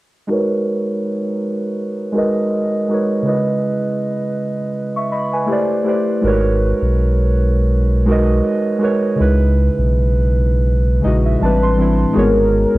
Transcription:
0.27 G#3 D#4 F#4 A#4
0.32 B4 C#5
2.12 G#3 D#4 F#4 A#4
2.17 B4 D#5
2.88 G#3 D#4 F#4 A#4
2.93 B4 C#5
3.22 C#3 G#3 E4
3.27 B4 D#5
4.96 E5 C#6
5.12 D#5 B5
5.33 B4 G#5
5.46 A3 E4 G4 B4
5.51 C5 D5
5.84 A3 E4 G4 B4
5.88 C5 D5
6.21 G#1 G#3 D#4 F#4 A#4
6.26 B4 C#5
6.82 B1
8.05 G#3 D#4 F#4 A#4
8.10 B4 D#5
8.78 G#3 D#4 F#4 A#4
8.83 B4 C#5
9.16 C#3 G#3 D#4
9.20 C#2 E4 B4
9.78 B1
11.01 C#3 G#3 D#4 D#5
11.05 A#1 E4 F#4
11.25 E5
11.39 A1 A2 E3 G3 C4 A5
11.44 D4 B4
11.63 C6
11.75 A2 E3 G3 C4
11.80 D4 E4
12.13 G#1 G#3 D#4 F#4 G#4
12.17 B3 A#4 C#5
12.74 B1

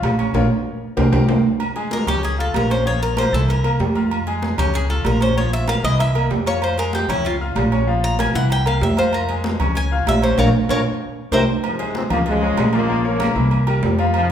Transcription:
Already playing: F4 F5 F6
0.02 A#1, high conga, low timbale, low agogo
0.19 C#4 C#5 C#6, low agogo
0.34 A#1 F4 A#4 C#5, high conga, high timbale
0.97 C2 G4 A#4 C5, high conga, high timbale
1.12 C2 G4 A#4 C5, high conga, high timbale
1.28 G4 A#4 C5, high conga, high timbale
1.60 high conga, low agogo
1.76 G#3 G#4 G#5, high conga, low agogo
1.91 A#4, high conga, low timbale
2.07 C#2 C#4 G4 C#5 C#6, high conga, low conga, low agogo
2.23 G#4, high conga, low agogo
2.38 F4 A4 F5 F6, high conga
2.54 A#1 A#4, high conga, low timbale, low agogo
2.70 C#4 C5 C#5 C#6, low agogo
2.86 F3 F4 C#5 F5, high conga
3.03 A#4
3.17 A#3 A#4 C5 A#5, high conga, low timbale, low agogo
3.32 C2 E3 E4 A4 E5, high conga
3.48 A#4, high conga, low agogo
3.64 A#3 A#4 A#5, high conga, low agogo
3.79 F2 G3 G4 G5, high conga, low timbale
3.95 F4 F5 F6, high conga, low agogo
4.11 high conga, low agogo
4.27 G#3 G#4 G#5, high conga, low agogo
4.42 high conga, low timbale
4.58 C#2 C#4 G4 C#5 C#6, high conga, low conga, low agogo
4.74 G#4, high conga, low agogo
4.89 F4 A4 F5 F6, high conga
5.05 A#1 A#4, high conga, low timbale, low agogo
5.21 C#4 C5 C#5 C#6, high conga, low agogo
5.36 F3 F4 C#5 F5, high conga
5.52 E5, high conga
5.68 A#3 A#4 F5 A#5, high conga, low timbale, low agogo
5.83 C2 E3 E4 D#5 E5, high conga
5.99 E5, high conga, low agogo
6.15 A#3 A#4 A#5, high conga, low agogo
6.30 F2 G3 G4 G5, high conga, low timbale
6.46 F4 C#5 F5 F6, low agogo
6.62 C5, high conga, low agogo
6.78 G#3 G#4 A#4 G#5, low agogo
6.93 G4, high conga, low timbale
7.08 C#2 C#4 E4 C#5 C#6, high conga, low conga, low agogo
7.25 F4, high conga, low agogo
7.40 F4 F5 F6, high conga
7.56 A#1, high conga, low timbale, low agogo
7.72 C#4 C#5 C#6, low agogo
7.87 F3 F4 F5, high conga
8.03 A#5, high conga
8.19 A#3 A#4 G#5 A#5, high conga, low timbale, low agogo
8.34 C2 E3 E4 E5 F#5, high conga
8.50 G5, high conga, low agogo
8.66 A#3 A#4 F5 A#5, high conga, low agogo
8.81 F2 G3 G4 E5 G5, high conga, low timbale
8.97 F4 C5 F5 F6, low agogo
9.13 A#4, high conga, low agogo
9.28 G#3 G#4 G#5, high conga, low agogo
9.44 high conga, low timbale
9.60 C#2 C#4 C#5 C#6, high conga, low conga, low agogo
9.75 G#5, high conga, low agogo
9.91 F4 F5 F6, high conga
10.07 A#1 E5, high conga, low timbale, low agogo
10.22 C#4 C5 C#5 C#6, low agogo
10.38 A#1 F4 A#4 C#5 F5, high conga, high timbale
10.69 A#1 F4 A#4 C#5 F5, high conga, high timbale
11.32 C2 G4 A#4 C5 E5, high conga, high timbale
11.64 G#2 C3 F3, high conga, low agogo
11.79 G#3 G#4 C5, high conga, low agogo
11.95 C4, high conga, low timbale
12.10 C#2 F3 A#3 F4 F5, high conga, low conga, low agogo
12.26 C#3 F3 G#3, high conga, low conga, low agogo
12.42 G#3 G#4 C#5, high conga
12.57 A#1, high conga, low timbale, low agogo
12.73 C#3 F3 A#3 F4 F5, low agogo
12.89 F3 F4 F5, high conga
13.04 C#3 F3 A#3 A#4 C#5, high conga
13.20 high conga, low timbale, low agogo
13.35 C2 E3 E4 E5, high conga
13.51 high conga, low agogo
13.67 G3 G4 A#4, high conga, low agogo
13.82 F2, high conga, low timbale
13.99 F3 F4 F5, low agogo
14.14 G#2 C3 F3, high conga, low agogo

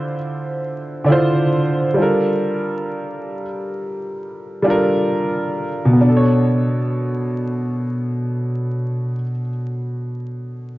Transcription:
Already playing: D3 D4 E4 F4 C5
1.04 D3 D4 E4
1.10 F4 C5
1.94 G3 D4
1.98 F4 A4 A#4
4.62 G3 D4 F4
4.68 A4 A#4
5.85 B2
5.93 B3
6.01 D4
6.09 A4
6.17 C#5

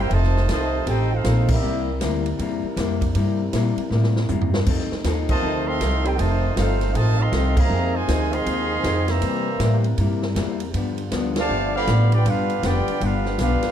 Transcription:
Already playing: C3 A#3 E4 G4
0.00 E4 A#4 C5 G5
0.10 F1 C3 D#3 F3 A3 C4 D#4 F4 A4 C5 D#5 A5, kick, ride
0.23 snare
0.37 snare
0.49 C2 C3 D#3 F3 A3 C4 D#4 F4 A4 C5 D#5 A5, kick, snare, hi-hat pedal, ride
0.86 A1 F3 C4 D#4 G4 A4 C5 G5, kick, ride
1.13 A3 C4 D#4 F4 A4 C5 F5
1.24 A#1 F3 C4 D#4 A4, kick, snare, hi-hat pedal, ride
1.49 G3 A#3 E4 G4 A#4 E5, kick, crash
1.53 C4
1.62 C2 C3 G3 A#3 E4 A#4
2.01 D2 C3 G3 A#3 E4, kick, snare, hi-hat pedal, ride
2.26 ride
2.39 E2 C3 G3 A#3 E4, kick, ride
2.63 muted upright bass stroke
2.77 F2 C3 G3 A#3 E4, kick, snare, hi-hat pedal, ride
3.01 kick, ride
3.15 G2 C3 G3 A#3 E4, kick, ride
3.53 A#2 C3 G3 A#3 E4, kick, snare, hi-hat pedal, ride
3.77 muted upright bass stroke, ride
3.90 A2 C3 G3, snare
3.94 A#3 E4
4.03 snare
4.16 snare
4.29 G2 C3 G3 A#3 E4, floor tom, hi-hat pedal
4.41 floor tom
4.54 snare
4.66 F2 F3 A3 C4 D#4, kick, crash
4.71 A4
4.79 snare
4.92 muted upright bass stroke, snare
5.04 D#2 F3 C4 D#4 A4, kick, snare, hi-hat pedal, ride
5.29 C3 D#3 A3 F4 C5 D#5 A5, kick, crash
5.42 D2 F3 C4 D#4 A4
5.67 D#3 A3 C4 A4 D#5 F5 C6
5.81 C2 F3 C4 D#4 A4, kick, snare, hi-hat pedal, ride
6.05 D#4 G4 A4 C5 G5, ride
6.18 F1 C3 D#3 F3 A3 C4 D#4 F4 C5 D#5 A5, kick, ride
6.23 A4
6.56 G1 F3 A3 C4 D#4 F4 A4 C5 F5, kick, snare, hi-hat pedal, ride
6.81 snare, ride
6.94 A1 C3 D#3 F3 A3 C4 D#4 F4 A4 C5 D#5 A5, kick, ride
7.19 D#3 A3 C4 A4 D#5 F5 C6
7.32 C2 F3 C4 D#4 A4, kick, snare, hi-hat pedal, ride
7.57 C3 D#3 A#3 G#4 D#5 F5 A#5, kick, crash
7.70 F2 C3 F3 G#3 C4 D#4 G#4
7.94 C3 D#3 G#3 F4 C5 D#5 G#5
8.08 D2 F3 C4 D#4 G#4, kick, snare, hi-hat pedal, ride
8.32 D#3 G#3 C4 G#4 D#5 F5 C6, ride
8.45 D#2 F3 C4 D#4 G#4, kick, ride
8.83 F2 F3 C4 D#4 G#4, kick, snare, hi-hat pedal, ride
9.08 E3 G3 A#3 G4 C5 E5 A#5, snare, ride
9.21 C3 G3 A#3 E4 A#4, kick, ride
9.59 A2 C3 G3 A#3 E4, kick, snare, hi-hat pedal, ride
9.84 ride
9.98 G2 C3 G3 A#3 E4, kick, ride
10.22 snare
10.35 E2 C3 G3 A#3 E4, kick, snare, hi-hat pedal, ride
10.60 ride
10.73 G2 D3 F3 B3 F4, kick, ride
10.77 D4
10.98 ride
11.11 D2 G2 F3 B3 D4, kick, snare, hi-hat pedal, ride
11.36 D3 F3 A3 G4 D5 F5 A5, snare, ride
11.49 G1 G2 F3 B3 D4
11.75 D3 F3 B3 G4 D5 F5 B5
11.87 A1 G2 F3 B3 D4, kick, snare, hi-hat pedal, ride
12.12 B3 D4 F4 G4 B4 D5 G5, ride
12.25 G1 G2 F3 B3 D4 F4 G4 B4 F5, kick, ride
12.50 ride
12.63 F1 G2 F3 B3 D4 F4 G4 B4 D5 G5, kick, snare, hi-hat pedal, ride
12.87 muted upright bass stroke, ride
13.01 G1 G2 F3 B3 D4 F4 G4 B4 F5, kick, ride
13.25 snare
13.38 B1 G2 F3 B3 D4 F4 G4 B4 F5, kick, snare, hi-hat pedal, ride
13.63 snare, ride

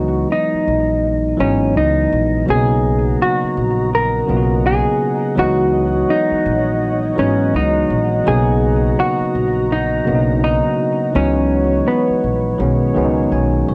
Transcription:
Already playing: C#2 E3 F#3 G#3 B3 D#4 F#4
0.32 D#4
0.54 muted upright bass stroke
0.68 A#1
1.37 G#1 E3 F#3 G#3 B3 C#4 D#4
1.76 C#2 D#4
2.12 A#1
2.46 B1 C#3 F#3 A#3 B3 C#4 F#4 D#5 F#5 A#5
2.50 G#4
2.56 D#4
3.22 F#4
3.43 muted upright bass stroke
3.57 A#1
3.95 A#4
4.27 B1 C#3 F#3 A#3 B3 F4
4.37 F#4
4.66 G#4
5.35 C#2 E3 F#3 G#3 B3 D#4 F#4 C#5
6.10 D#4
6.32 muted upright bass stroke
6.46 A#1
7.16 G#1 E3 F#3 G#3 B3 C#4 D#4
7.54 C#2 D#4
7.90 A#1
8.24 B1 C#3 F#3 A#3 B3 D#4 G#4 A#5
9.00 F#4
9.21 muted upright bass stroke
9.35 A#1
9.72 D#4
10.05 B1 C#3 F#3 A#3 B3 D4
10.15 D#4
10.44 D#4
11.13 C#2 E3 F#3 G#3 B3 C#4 D#4 C#5
11.88 B3
12.09 muted upright bass stroke
12.24 A#1
12.58 B1 D#3 F#3 G#3 B3 C#4 G#4 C#5
12.94 C#2 D#3 F#3 G#3 B3 C#4
13.05 D#4
13.32 B1 G#5
13.68 A#1 C#5

